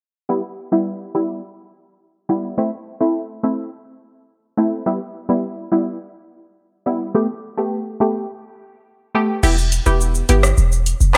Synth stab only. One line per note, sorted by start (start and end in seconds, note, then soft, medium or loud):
0.29 0.42 G3 medium
0.29 0.42 B3 medium
0.29 0.42 E4 loud
0.72 1.11 G3 medium
0.72 1.11 B3 medium
0.72 1.12 E4 medium
1.15 1.41 G3 medium
1.15 1.41 B3 medium
1.15 1.41 E4 medium
2.29 2.55 G3 medium
2.29 2.56 B3 medium
2.29 2.56 E4 medium
2.58 2.70 A3 medium
2.58 2.70 C4 medium
2.58 2.71 E4 loud
3.00 3.40 A3 medium
3.00 3.40 C4 medium
3.00 3.40 E4 medium
3.43 3.70 A3 medium
3.43 3.70 C4 medium
3.43 3.70 E4 medium
4.57 4.84 A3 medium
4.57 4.84 C4 medium
4.57 4.84 E4 medium
4.86 4.99 G3 medium
4.86 4.99 B3 medium
4.86 4.99 E4 loud
5.29 5.68 G3 medium
5.29 5.69 B3 medium
5.29 5.69 E4 medium
5.72 5.98 G3 medium
5.72 5.98 B3 medium
5.72 5.98 E4 medium
6.86 7.12 G3 medium
6.86 7.13 B3 medium
6.86 7.13 E4 medium
7.14 7.27 A3 medium
7.14 7.27 B3 medium
7.14 7.28 G4 loud
7.57 7.97 A3 medium
7.57 7.97 B3 medium
7.57 7.97 G4 medium
8.00 8.27 A3 medium
8.00 8.27 B3 medium
8.00 8.27 G4 medium
9.15 9.41 A3 medium
9.15 9.41 B3 medium
9.15 9.41 G4 medium
9.43 9.56 B3 medium
9.43 9.56 E4 medium
9.43 9.56 G4 loud
9.86 10.26 B3 medium
9.86 10.26 E4 medium
9.86 10.26 G4 medium
10.29 10.55 B3 medium
10.29 10.55 E4 medium
10.29 10.56 G4 medium